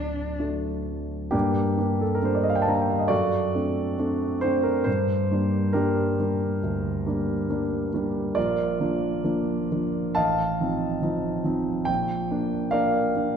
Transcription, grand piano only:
0.00 1.30 D1 soft
0.00 1.29 D2 soft
0.00 0.39 F#3 soft
0.00 0.39 A3 soft
0.00 0.40 D4 soft
0.39 1.30 F#3 soft
0.39 1.30 A3 soft
0.39 1.30 D4 soft
1.31 1.76 G2 medium
1.31 1.77 A#3 medium
1.31 1.77 D4 medium
1.31 2.03 G4 medium
1.78 2.18 G3 soft
1.78 2.19 A#3 soft
1.78 2.19 D4 soft
2.01 2.16 A4 medium
2.15 2.27 A#4 medium
2.23 2.63 G3 soft
2.23 2.63 A#3 soft
2.23 2.63 D4 soft
2.23 2.36 C5 medium
2.35 2.44 D5 medium
2.43 2.51 D#5 medium
2.50 2.57 F5 medium
2.56 2.63 G5 medium
2.62 2.69 A5 medium
2.67 3.07 G3 soft
2.67 3.07 A#3 soft
2.67 3.07 D4 soft
2.67 2.76 A#5 medium
2.75 2.84 A5 medium
2.82 2.92 G5 medium
2.90 3.00 F5 medium
2.99 3.09 D#5 medium
3.08 3.53 F#2 soft
3.08 4.38 F#4 medium
3.08 4.38 A4 medium
3.08 4.41 D5 medium
3.54 3.94 A3 soft
3.54 3.95 C4 soft
3.54 3.95 D4 soft
3.98 4.38 A3 soft
3.98 4.39 C4 soft
3.98 4.39 D4 soft
4.41 4.83 A3 soft
4.41 4.83 C4 soft
4.41 4.83 D4 soft
4.41 4.64 C5 medium
4.63 4.86 A#4 medium
4.84 5.29 G2 medium
4.84 5.74 C5 medium
5.31 5.72 G3 soft
5.31 5.72 A#3 soft
5.31 5.72 D4 soft
5.73 6.16 G3 soft
5.73 6.16 A#3 soft
5.73 6.19 D4 medium
5.73 7.88 G4 medium
5.73 7.92 A#4 medium
6.20 6.59 G3 soft
6.20 6.60 A#3 soft
6.20 6.60 D4 soft
6.63 7.05 D2 soft
7.07 7.46 G3 soft
7.07 7.46 A#3 soft
7.07 7.46 D4 soft
7.50 7.89 G3 soft
7.50 7.89 A#3 soft
7.50 7.90 D4 soft
7.94 8.33 G3 soft
7.94 8.33 A#3 soft
7.94 8.33 D4 soft
8.35 8.79 A#1 soft
8.35 10.13 F4 medium
8.35 10.13 A#4 medium
8.35 10.16 D5 medium
8.80 9.20 F3 soft
8.80 9.20 A#3 soft
8.80 9.21 D4 soft
9.24 9.67 F3 soft
9.24 9.67 A#3 soft
9.24 9.67 D4 soft
9.72 10.13 F3 soft
9.72 10.13 A#3 soft
9.72 10.13 D4 soft
10.15 10.59 A1 soft
10.15 11.83 D#5 medium
10.15 11.83 F5 medium
10.15 11.87 A5 medium
10.60 10.98 F3 soft
10.60 10.98 C4 soft
10.60 10.98 D#4 soft
11.02 11.41 F3 soft
11.02 11.41 C4 soft
11.02 11.41 D#4 soft
11.44 11.84 F3 soft
11.44 11.84 C4 soft
11.44 11.84 D#4 soft
11.85 12.29 A#1 medium
11.85 12.72 G5 medium
12.31 12.69 A#3 soft
12.31 12.70 D4 soft
12.71 13.11 A#3 soft
12.71 13.11 D4 soft
12.71 13.37 A#4 medium
12.71 13.37 D5 medium
12.71 13.37 F5 medium
13.16 13.37 A#3 soft
13.16 13.37 D4 soft

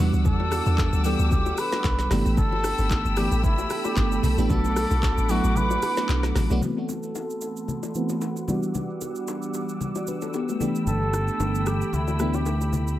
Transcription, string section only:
0.00 2.09 G3 medium
0.00 2.07 F#5 medium
0.00 2.09 D6 medium
0.00 2.09 E6 medium
2.11 6.58 A4 medium
2.11 4.48 G5 medium
2.11 6.58 B5 medium
2.11 4.48 E6 medium
4.50 6.60 F#5 medium
4.50 6.60 D6 medium
6.62 8.46 A4 medium
6.62 10.56 F#5 medium
6.62 8.46 B5 medium
6.62 8.46 C6 medium
8.48 10.58 G3 medium
8.48 10.58 D6 medium
8.48 12.95 E6 medium
10.60 12.97 A4 medium
10.60 12.97 G5 medium
10.60 12.99 B5 medium

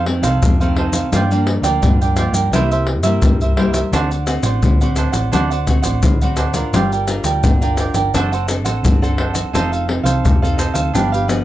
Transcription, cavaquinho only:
0.06 muted cavaquinho stroke soft
0.23 0.58 A4 soft
0.23 0.58 C5 medium
0.23 0.57 F5 medium
0.60 0.77 A4 soft
0.60 0.77 C5 soft
0.60 0.76 F5 soft
0.77 0.93 D#4 soft
0.77 0.94 A4 soft
0.77 0.94 C5 medium
0.77 0.93 F5 soft
0.94 1.11 A4 soft
0.94 1.11 C5 soft
0.94 1.11 F5 soft
1.14 1.29 F4 medium
1.14 1.30 A#4 medium
1.14 1.30 D5 medium
1.14 1.30 G5 medium
1.32 1.46 A#4 soft
1.32 1.47 D5 soft
1.32 1.47 G5 soft
1.47 muted cavaquinho stroke soft
1.63 1.99 A#4 medium
1.63 1.98 D5 medium
1.63 1.98 G5 medium
2.01 2.16 A#4 soft
2.01 2.17 D5 soft
2.01 2.17 G5 soft
2.17 2.33 F4 soft
2.17 2.34 A#4 soft
2.17 2.34 D5 medium
2.17 2.32 G5 medium
2.34 2.52 A#4 soft
2.34 2.51 D5 medium
2.34 2.51 G5 medium
2.53 2.69 E4 medium
2.53 2.70 A#4 medium
2.53 2.70 C5 medium
2.53 2.70 E5 medium
2.71 2.87 A#4 medium
2.71 2.87 C5 medium
2.71 2.87 E5 medium
2.88 muted cavaquinho stroke soft
3.03 3.39 A#4 soft
3.03 3.38 C5 medium
3.03 3.38 E5 medium
3.42 3.56 A#4 soft
3.42 3.57 C5 soft
3.42 3.57 E5 soft
3.57 3.74 E4 soft
3.57 3.73 A#4 soft
3.57 3.73 C5 soft
3.57 3.71 E5 soft
3.72 3.91 A#4 soft
3.72 3.91 C5 soft
3.72 3.90 E5 soft
3.93 4.09 D4 medium
3.93 4.10 C5 medium
3.93 4.10 D5 medium
3.93 4.09 F#5 medium
4.11 4.27 C5 soft
4.11 4.27 D5 soft
4.11 4.27 F#5 soft
4.28 muted cavaquinho stroke soft
4.44 4.79 C5 medium
4.44 4.79 D5 medium
4.44 4.78 F#5 medium
4.81 4.96 C5 soft
4.81 4.97 D5 soft
4.81 4.97 F#5 soft
4.97 5.14 D4 soft
4.97 5.13 C5 soft
4.97 5.13 D5 soft
4.97 5.11 F#5 medium
5.12 5.31 C5 soft
5.12 5.31 D5 medium
5.12 5.30 F#5 medium
5.32 5.49 D4 medium
5.32 5.49 C5 medium
5.32 5.49 D5 medium
5.32 5.49 F#5 medium
5.50 5.66 C5 medium
5.50 5.67 D5 medium
5.50 5.67 F#5 medium
5.67 muted cavaquinho stroke soft
5.82 6.19 C5 medium
5.82 6.19 D5 medium
5.82 6.18 F#5 medium
6.22 6.36 C5 soft
6.22 6.37 D5 soft
6.22 6.38 F#5 soft
6.37 6.54 D4 soft
6.37 6.54 C5 soft
6.37 6.54 D5 soft
6.37 6.52 F#5 medium
6.54 6.72 C5 soft
6.54 6.72 D5 soft
6.54 6.71 F#5 soft
6.74 6.90 F4 medium
6.74 6.90 A#4 medium
6.74 6.91 D5 medium
6.74 6.91 G5 medium
6.93 7.08 A#4 soft
6.93 7.08 D5 soft
6.93 7.08 G5 soft
7.08 muted cavaquinho stroke soft
7.25 7.60 A#4 medium
7.25 7.60 D5 medium
7.25 7.59 G5 medium
7.63 7.79 A#4 soft
7.63 7.79 D5 soft
7.63 7.78 G5 soft
7.78 7.95 F4 soft
7.78 7.95 A#4 soft
7.78 7.94 D5 medium
7.78 7.93 G5 soft
7.95 8.12 A#4 soft
7.95 8.12 D5 medium
7.95 8.12 G5 medium
8.14 8.30 D4 medium
8.14 8.31 A4 medium
8.14 8.31 C5 medium
8.14 8.31 F#5 medium
8.32 8.47 A4 medium
8.32 8.47 C5 medium
8.32 8.47 F#5 medium
8.47 muted cavaquinho stroke soft
8.64 9.00 A4 soft
8.64 9.00 C5 medium
8.64 8.99 F#5 medium
9.02 9.17 A4 soft
9.02 9.18 C5 soft
9.02 9.18 F#5 soft
9.17 9.34 D4 soft
9.17 9.34 A4 soft
9.17 9.33 C5 soft
9.17 9.32 F#5 soft
9.33 9.52 A4 soft
9.33 9.52 C5 soft
9.33 9.51 F#5 soft
9.53 9.70 D#4 medium
9.53 9.70 A4 medium
9.53 9.71 C5 medium
9.53 9.71 F5 medium
9.72 9.87 A4 soft
9.72 9.87 C5 soft
9.72 9.88 F5 soft
9.88 muted cavaquinho stroke soft
10.03 10.40 A4 medium
10.03 10.40 C5 medium
10.03 10.39 F5 medium
10.42 10.56 A4 soft
10.42 10.57 C5 soft
10.42 10.58 F5 soft
10.57 10.74 D#4 soft
10.57 10.74 A4 soft
10.57 10.73 C5 medium
10.57 10.72 F5 medium
10.74 10.92 A4 soft
10.74 10.92 C5 medium
10.74 10.91 F5 medium
10.93 11.10 D4 medium
10.93 11.11 G4 medium
10.93 11.11 B4 medium
10.93 11.11 F5 medium
11.12 11.27 G4 soft
11.12 11.28 B4 medium
11.12 11.28 F5 medium
11.28 muted cavaquinho stroke soft

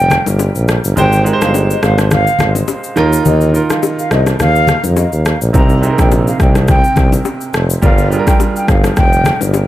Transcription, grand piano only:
0.00 0.99 G3 medium
0.00 0.98 D4 medium
0.00 0.99 F4 medium
0.00 0.99 A#4 medium
0.96 1.16 G#3 medium
0.96 1.16 D#4 medium
0.96 1.16 G4 medium
0.96 1.17 C5 medium
1.24 1.98 G#3 medium
1.24 1.99 D#4 medium
1.24 1.99 G4 medium
1.24 1.33 A#4 medium
1.33 2.03 C5 medium
2.96 3.43 D#3 medium
2.96 3.44 D#4 medium
2.96 3.44 F4 medium
2.96 3.44 A#4 loud
3.53 4.27 D#3 medium
3.53 4.28 D#4 medium
3.53 4.28 F4 medium
3.53 4.28 A#4 medium
5.53 5.73 C3 medium
5.53 5.73 C4 medium
5.53 5.73 D#4 medium
5.53 5.74 A#4 medium
5.82 6.56 C3 medium
5.82 6.56 C4 medium
5.82 6.57 D#4 medium
5.82 5.91 G#4 medium
5.91 6.60 A#4 medium
7.82 8.01 G3 medium
7.82 8.02 D4 medium
7.82 8.02 F4 medium
7.82 8.03 A#4 medium
8.10 8.84 G3 medium
8.10 8.85 D4 medium
8.10 8.85 F4 medium
8.10 8.19 G#4 medium
8.19 8.89 A#4 medium

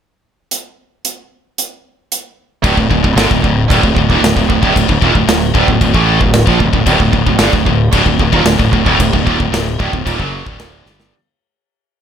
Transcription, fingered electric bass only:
2.64 2.76 D1 loud
2.77 2.89 D1 medium
2.90 3.02 D1 medium
3.04 3.16 D1 medium
3.16 3.28 G1 loud
3.31 3.42 D1 medium
3.44 3.68 D1 medium
3.70 3.82 D1 loud
3.83 3.95 D1 medium
3.96 4.08 D1 medium
4.10 4.21 D#1 loud
4.21 4.34 D1 medium
4.36 4.48 D1 medium
4.50 4.61 D1 medium
4.63 4.74 D1 loud
4.76 4.88 D1 medium
4.89 5.01 D1 medium
5.02 5.14 D#1 medium
5.15 5.27 D1 medium
5.27 5.52 D1 medium
5.55 5.67 D1 medium
5.68 5.80 D1 medium
5.81 5.93 D1 medium
5.94 6.19 A1 loud
6.21 6.45 D1 medium
6.47 6.59 A#1 loud
6.60 6.72 D1 medium
6.73 6.85 D1 medium
6.86 6.99 D1 loud
7.00 7.12 D1 medium
7.13 7.25 D1 medium
7.26 7.38 D1 medium
7.39 7.52 G1 medium
7.53 7.65 D1 medium
7.67 7.91 D1 medium
7.93 8.05 D1 loud
8.06 8.18 D1 medium
8.19 8.32 D1 medium
8.33 8.44 D#1 loud
8.45 8.58 D1 medium
8.59 8.72 D1 medium
8.73 8.85 D1 medium
8.86 8.98 D1 medium
8.99 9.12 D1 medium
9.14 9.25 D1 medium
9.27 9.39 D#1 medium
9.40 9.51 D1 medium
9.52 9.77 D1 medium
9.80 9.92 D1 medium
9.93 10.05 D1 medium
10.06 10.18 D#1 loud
10.19 10.44 F#1 loud
10.46 10.83 D1 loud
10.86 11.11 G1 loud

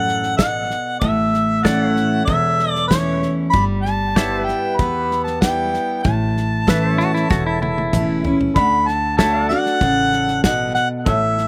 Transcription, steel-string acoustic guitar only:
0.00 0.35 F#2 medium
0.39 0.98 B2 medium
1.01 2.21 A2 medium
1.64 2.24 E3 soft
1.64 2.24 A3 medium
1.64 2.25 C#4 medium
1.64 2.25 E4 medium
2.27 3.47 E2 medium
2.91 3.50 E3 soft
2.91 3.51 A3 medium
2.91 3.51 C#4 medium
2.91 3.51 E4 medium
3.53 4.15 G3 medium
4.16 4.76 G3 medium
4.16 4.76 B3 medium
4.16 4.77 E4 medium
4.79 5.41 B3 medium
5.42 6.01 G3 medium
5.42 6.02 B3 medium
5.42 6.02 E4 medium
6.04 7.24 A2 medium
6.67 7.27 E3 medium
6.67 7.27 A3 medium
6.67 7.28 C#4 medium
6.67 7.28 E4 medium
7.30 8.49 E2 medium
7.93 8.23 E3 medium
7.93 8.23 A3 medium
7.93 8.24 C#4 medium
7.93 8.23 E4 medium
8.24 8.56 C#4 soft
8.24 8.54 E4 medium
8.57 9.18 D3 medium
9.19 9.49 D3 medium
9.19 9.49 A3 medium
9.19 9.49 D4 medium
9.19 9.49 F#4 medium
9.50 9.81 D4 soft
9.50 9.80 F#4 medium
9.83 10.41 C#3 medium
10.45 11.04 B2 medium
11.07 11.48 A2 medium

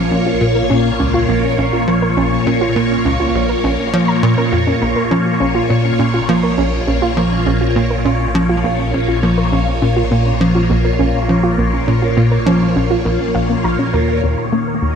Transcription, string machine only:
0.00 14.23 A#2 medium
0.00 14.23 A#3 medium
0.00 14.23 F4 medium
0.00 14.95 C#5 medium
14.23 14.95 D#3 medium
14.67 14.95 A#3 medium
14.85 14.95 F#4 medium
14.85 14.95 D#5 medium

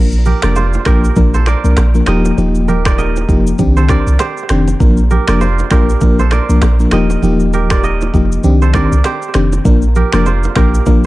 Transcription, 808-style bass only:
0.00 0.34 A#1 loud
0.43 0.78 F1 medium
0.86 1.10 A#1 medium
1.16 1.55 A#1 medium
1.64 1.74 C2 medium
1.77 2.01 A#1 medium
2.07 2.32 D#1 loud
2.38 3.25 D#1 loud
3.29 3.53 F1 medium
3.59 3.97 C2 loud
4.07 4.17 C2 medium
4.50 4.74 F1 medium
4.80 5.19 A#1 loud
5.28 5.63 F1 medium
5.71 5.95 A#1 medium
6.01 6.40 A#1 medium
6.49 6.59 C2 medium
6.62 6.86 A#1 medium
6.92 7.16 D#1 loud
7.23 8.10 D#1 loud
8.14 8.38 F1 medium
8.44 8.82 C2 loud
8.92 9.02 C2 medium
9.35 9.59 F1 medium
9.65 10.04 A#1 loud
10.13 10.48 F1 medium
10.56 10.80 A#1 medium
10.87 11.06 A#1 loud

